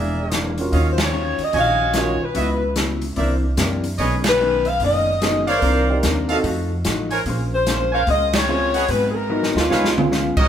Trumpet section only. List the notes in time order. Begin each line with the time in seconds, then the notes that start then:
Already playing: G#4 A#4 D5 E5
0.72 F#4 C#5 D#5 F5
1.54 F#4 C#5 D#5 G#5
2.35 F#4 B4 D#5 E5
3.17 A#4 C5 D5 E5
3.98 G#4 B4 C#5 D#5
5.47 A#4 C5 D5 F5
6.29 F#4 A4 D#5 F5
7.11 A#4 C5 C#5 G#5
7.92 A#4 C5 C#5 G#5
8.74 G#4 B4 D#5 F#5
9.70 G#4 B4 C#5 F5
10.37 F#4 A#4 C#5 D#5